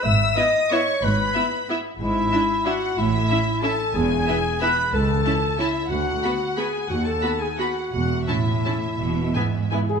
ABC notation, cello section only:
X:1
M:3/4
L:1/8
Q:1/4=180
K:E
V:1 name="Cello section" clef=bass
G,,2 z4 | G,,2 z4 | [K:A] G,,2 z4 | A,,2 z4 |
E,,2 z4 | C,,2 z4 | D,,2 z4 | ^D,,2 z4 |
E,,2 A,,4 | B,,2 G,,4 |]